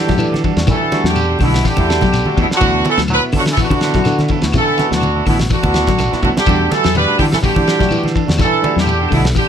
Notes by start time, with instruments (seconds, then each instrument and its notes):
Already playing: trombone D3, fingered electric bass E3, clean electric guitar G3 D4 F#4 A4, horn section G4
0.07 clean electric guitar F#3, tine electric piano G3 A3 D4 A4, kick, snare, ride bell, low conga
0.18 fingered electric bass E3, ride bell, claves, shekere
0.33 clean electric guitar D4 F#4 A4, snare, high conga
0.43 clean electric guitar E3 G3 D4 F#4 A4, kick, ride bell, shekere
0.56 fingered electric bass E2, tine electric piano G3 A3 D4 F#4, snare, ride bell
0.67 clean electric guitar E3, fingered electric bass E3, trombone E3, kick, snare, ride bell, low conga, claves, shekere
0.72 horn section A4
0.81 clean electric guitar D4 F#4 A4
0.92 clean electric guitar G3 D4 F#4 A4, tine electric piano G3 A3 D4 F#4, snare, ride bell, high conga, shekere
1.04 fingered electric bass E2, clean electric guitar F#3, snare
1.08 trombone D3, horn section G4
1.16 ride bell, claves, shekere
1.29 clean electric guitar D4 F#4 A4
1.39 fingered electric bass B1, trombone B2, clean electric guitar D3 G3 D4 F#4 A4, tine electric piano G3 A3 D4 F#4, kick, open hi-hat, high conga, claves, shekere
1.44 horn section E4
1.54 snare, ride bell
1.64 trombone D3, clean electric guitar E3, horn section G4, kick, snare, ride bell, shekere
1.76 fingered electric bass E2, tine electric piano G3 A3 D4 E4, clean electric guitar D4 F#4 A4, kick, high conga, claves
1.88 clean electric guitar D4 F#4 A4, snare, ride bell, shekere
2.01 fingered electric bass B1, clean electric guitar F#3, kick, snare, ride bell, low conga
2.13 snare, ride bell, claves, shekere
2.25 tine electric piano G3 A3 D4 F#4, clean electric guitar D4 F#4 A4, muted fingered electric bass stroke, high conga
2.37 fingered electric bass E2, clean electric guitar E3 G3 D4 F#4 A4, kick, ride bell, shekere
2.41 trombone B2, horn section E4
2.49 muted fingered electric bass stroke, snare
2.54 trombone D3, horn section F#4
2.61 fingered electric bass D2, clean electric guitar E3 F#3 B3 E4 A4, tine electric piano B3 E4 F#4, kick, ride bell, low conga, claves, shekere
2.75 clean electric guitar B3 E4 A4
2.85 clean electric guitar F#3 B3 E4 A4, ride bell, high conga, shekere
2.89 trombone E3, horn section A4
2.98 fingered electric bass D2, clean electric guitar F#3, snare, ride bell
3.08 trombone F#3, tine electric piano B3 E4, ride bell, claves, shekere
3.12 tine electric piano F#4, horn section B4
3.24 clean electric guitar B3 E4
3.32 fingered electric bass D3, clean electric guitar D3 F#3 B3 E4 A4, trombone D3, kick, open hi-hat, high conga, claves, shekere
3.38 horn section F#4
3.46 snare, ride bell
3.51 trombone E3, horn section A4
3.57 clean electric guitar E3, tine electric piano B3 E4, kick, snare, ride bell, shekere
3.61 trombone D3, tine electric piano F#4, horn section F#4
3.70 fingered electric bass D3, clean electric guitar B3 E4 A4, kick, high conga, claves
3.81 clean electric guitar F#3 B3 E4 A4, snare, ride bell, shekere
3.94 clean electric guitar F#3, tine electric piano B3 E4 F#4, kick, snare, ride bell, low conga
4.04 fingered electric bass D3, snare, ride bell, claves, shekere
4.19 clean electric guitar B3 E4, snare, high conga
4.28 clean electric guitar E3 F#3 B3 E4 A4, kick, ride bell, shekere
4.41 fingered electric bass D2, tine electric piano B3 E4 F#4, snare, ride bell
4.52 fingered electric bass D3, clean electric guitar E3, kick, snare, ride bell, low conga, claves, shekere
4.57 trombone E3, horn section A4
4.68 clean electric guitar B3 E4, muted clean electric guitar stroke
4.77 clean electric guitar F#3 E4 A4, tine electric piano B3 E4 F#4, snare, ride bell, high conga, shekere
4.91 fingered electric bass D2, trombone D3, clean electric guitar F#3, snare
4.95 horn section F#4
5.01 ride bell, high conga, claves, shekere
5.15 clean electric guitar B3 E4 A4
5.26 fingered electric bass A1, trombone B2, clean electric guitar D3 F#3 B3 E4 A4, tine electric piano B3 E4 F#4, horn section E4, kick, open hi-hat, high conga, claves, shekere
5.39 snare, ride bell, low conga
5.49 trombone D3, clean electric guitar E3, horn section F#4, kick, ride bell, shekere
5.63 fingered electric bass D2, tine electric piano B3 E4 F#4, clean electric guitar B3 E4 A4, kick, high conga, claves
5.74 clean electric guitar B3 E4 A4, muted clean electric guitar stroke, snare, ride bell, high conga, shekere
5.87 fingered electric bass A1, clean electric guitar F#3, kick, snare, ride bell, high conga
5.98 snare, ride bell, low conga, claves, shekere
6.11 tine electric piano B3 E4 F#4, clean electric guitar B3 E4 A4, snare, low conga
6.22 fingered electric bass D2, trombone D3, clean electric guitar F#3 B3 E4 A4, horn section F#4, muted clean electric guitar stroke, kick, ride bell, low conga, shekere
6.37 trombone D3, horn section G4, snare, low conga
6.46 fingered electric bass E2, clean electric guitar E3 G3 D4 F#4 A4, tine electric piano G3 A3 D4 F#4, kick, ride bell, low conga, claves, shekere
6.59 clean electric guitar D4 F#4 A4
6.70 trombone E3, clean electric guitar G3 F#4, horn section A4, muted clean electric guitar stroke, snare, ride bell, high conga, shekere
6.84 fingered electric bass E2, clean electric guitar F#3, snare, ride bell
6.94 tine electric piano G3 A3 D4 F#4, trombone G3, horn section B4, ride bell, high conga, claves, shekere
7.08 clean electric guitar D4 F#4 A4
7.18 clean electric guitar D3 G3 D4 F#4 A4, trombone D3, fingered electric bass E3, horn section G4, kick, open hi-hat, high conga, claves, shekere
7.32 trombone E3, horn section A4, snare, ride bell, low conga
7.41 clean electric guitar E3, tine electric piano G3 A3 D4 F#4, horn section G4, kick, ride bell, shekere
7.46 trombone D3
7.54 fingered electric bass E3, clean electric guitar D4 A4, muted clean electric guitar stroke, kick, high conga, claves
7.67 clean electric guitar G3 D4 F#4, snare, ride bell, shekere
7.79 clean electric guitar F#3, tine electric piano G3 A3 D4 F#4, kick, snare, ride bell, low conga
7.89 fingered electric bass E3, ride bell, claves, shekere
8.03 clean electric guitar D4 F#4 A4, snare, high conga
8.14 clean electric guitar E3 D4 A4, muted clean electric guitar stroke, kick, ride bell, shekere
8.26 fingered electric bass E2, tine electric piano G3 A3 D4 F#4, snare, ride bell, high conga
8.38 clean electric guitar E3, fingered electric bass E3, horn section A4, kick, snare, ride bell, low conga, claves, shekere
8.44 trombone E3
8.53 clean electric guitar D4 A4
8.62 tine electric piano G3 A3 D4 E4, clean electric guitar D4 F#4 A4, ride bell, high conga, shekere
8.76 fingered electric bass E2, clean electric guitar F#3, snare
8.80 trombone D3, horn section G4
8.86 ride bell, claves, shekere
9.00 clean electric guitar D4 F#4 A4
9.09 fingered electric bass B1, clean electric guitar D3 G3 D4 F#4 A4, tine electric piano G3 A3 D4, kick, open hi-hat, claves, shekere
9.13 trombone B2, horn section E4, tine electric piano A4, high conga
9.25 snare, ride bell
9.35 trombone D3, clean electric guitar E3, horn section G4, kick, ride bell, shekere